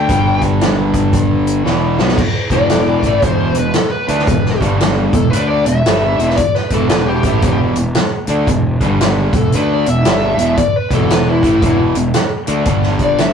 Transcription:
Already playing: lead electric guitar G5
0.08 fingered electric bass G1, distorted electric guitar G2 D3 G3, kick, closed hi-hat
0.42 kick, closed hi-hat
0.61 snare, closed hi-hat
0.94 kick, closed hi-hat
1.13 kick, closed hi-hat
1.47 closed hi-hat
1.64 fingered electric bass E1, distorted electric guitar E2 B2 E3, snare
1.98 fingered electric bass B1, distorted electric guitar B2 F#3 B3, snare
2.09 snare
2.18 kick, crash
2.50 fingered electric bass E1, distorted electric guitar E2 B2 E3, lead electric guitar D5, kick, closed hi-hat
2.70 snare, closed hi-hat
3.03 fingered electric bass A1, distorted electric guitar A2 E3 A3, kick, closed hi-hat
3.22 fingered electric bass E1, distorted electric guitar E2 B2 E3, lead electric guitar C5, kick, closed hi-hat
3.55 fingered electric bass E1, distorted electric guitar E2 B2, lead electric guitar B4, closed hi-hat
3.74 lead electric guitar A4, snare, closed hi-hat
3.91 lead electric guitar B4
4.08 fingered electric bass D2, distorted electric guitar D3 A3 D4, lead electric guitar B4, closed hi-hat
4.19 snare
4.27 fingered electric bass E1, distorted electric guitar E2 B2, kick, closed hi-hat
4.46 snare
4.61 fingered electric bass G1, distorted electric guitar G2 D3 G3, kick, closed hi-hat
4.80 snare, closed hi-hat
5.13 fingered electric bass E1, distorted electric guitar E2 B2, lead electric guitar A4, kick, closed hi-hat
5.30 fingered electric bass D2, distorted electric guitar D3, lead electric guitar B4, closed hi-hat
5.34 distorted electric guitar A3 D4
5.47 lead electric guitar D5
5.65 fingered electric bass E1, distorted electric guitar E2 B2, lead electric guitar E5, closed hi-hat
5.86 fingered electric bass G1, distorted electric guitar G2 D3 G3, snare, closed hi-hat
6.19 fingered electric bass E1, distorted electric guitar E2 B2 E3, closed hi-hat
6.30 snare
6.36 lead electric guitar D5, kick, closed hi-hat
6.55 lead electric guitar B4, snare
6.70 fingered electric bass E1, distorted electric guitar E2 B2 E3, lead electric guitar A4, kick, closed hi-hat
6.89 lead electric guitar B4, snare, closed hi-hat
7.06 lead electric guitar G4
7.23 fingered electric bass A1, distorted electric guitar A2 E3 A3, kick, closed hi-hat
7.42 fingered electric bass E1, distorted electric guitar E2 B2 E3, kick, closed hi-hat
7.76 fingered electric bass E1, distorted electric guitar E2 B2, closed hi-hat
7.95 snare, closed hi-hat
8.27 fingered electric bass D2, distorted electric guitar D3 A3 D4, closed hi-hat
8.47 fingered electric bass E1, distorted electric guitar E2 B2, kick, closed hi-hat
8.81 fingered electric bass G1, distorted electric guitar G2 D3 G3, kick, closed hi-hat
9.01 snare, closed hi-hat
9.33 fingered electric bass E1, distorted electric guitar E2 B2, kick, closed hi-hat
9.37 lead electric guitar A4
9.52 fingered electric bass D2, distorted electric guitar D3 A3 D4, lead electric guitar B4, closed hi-hat
9.74 lead electric guitar D5
9.86 fingered electric bass E1, distorted electric guitar E2 B2, lead electric guitar E5, closed hi-hat
10.05 fingered electric bass G1, distorted electric guitar G2 D3 G3, snare, closed hi-hat
10.38 fingered electric bass E1, distorted electric guitar E2 B2 E3, closed hi-hat
10.57 lead electric guitar D5, kick, closed hi-hat
10.76 lead electric guitar B4
10.91 fingered electric bass E1, distorted electric guitar E2 B2 E3, lead electric guitar A4, kick, closed hi-hat
11.10 lead electric guitar B4, snare, closed hi-hat
11.28 lead electric guitar E4
11.42 fingered electric bass A1, distorted electric guitar A2 E3 A3, kick, closed hi-hat
11.62 fingered electric bass E1, distorted electric guitar E2 B2 E3, kick, closed hi-hat
11.95 fingered electric bass E1, distorted electric guitar E2 B2, closed hi-hat
12.14 snare, closed hi-hat
12.47 fingered electric bass D2, distorted electric guitar D3 A3 D4, closed hi-hat
12.65 fingered electric bass G1, distorted electric guitar G2 D3 G3, kick, closed hi-hat
12.83 snare
12.99 lead electric guitar D5, kick, closed hi-hat
13.18 lead electric guitar E5, snare, closed hi-hat

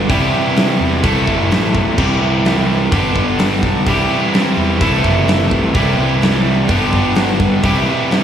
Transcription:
0.08 fingered electric bass C2, overdriven electric guitar C3 E3 G3 E4 G4, kick, open hi-hat
0.57 snare, open hi-hat
0.80 fingered electric bass E2
1.03 fingered electric bass C2, overdriven electric guitar C3 E3 A3 E4 A4, kick, open hi-hat
1.27 fingered electric bass F#1, kick
1.49 fingered electric bass A1, snare, open hi-hat
1.65 snare
1.75 fingered electric bass B1, kick
1.98 fingered electric bass C2, overdriven electric guitar C3 E3 G3 E4 G4, kick, crash
2.21 fingered electric bass C2
2.45 snare, open hi-hat
2.91 fingered electric bass G1, overdriven electric guitar G2 D3 G3 B3 D4 G4, kick, open hi-hat
3.15 fingered electric bass G1, kick
3.39 snare, open hi-hat
3.52 snare
3.63 fingered electric bass B1, kick
3.86 fingered electric bass C2, overdriven electric guitar C3 E3 G3 E4 G4, kick, open hi-hat
4.34 snare, open hi-hat
4.57 fingered electric bass E2
4.81 fingered electric bass C2, overdriven electric guitar C3 E3 A3 E4 A4, kick, open hi-hat
5.04 fingered electric bass F#1, kick
5.28 snare, open hi-hat
5.51 fingered electric bass C2, kick
5.74 fingered electric bass C2, overdriven electric guitar C3 E3 G3 E4 G4, kick, open hi-hat
5.98 fingered electric bass C2
6.22 snare, open hi-hat
6.69 fingered electric bass G1, overdriven electric guitar G2 D3 G3 B3 D4 G4, kick, open hi-hat
6.93 fingered electric bass G1, kick
7.15 snare, open hi-hat
7.40 fingered electric bass G2, kick
7.63 fingered electric bass C2, overdriven electric guitar C3 E3 G3 E4 G4, kick, open hi-hat
8.11 snare, open hi-hat

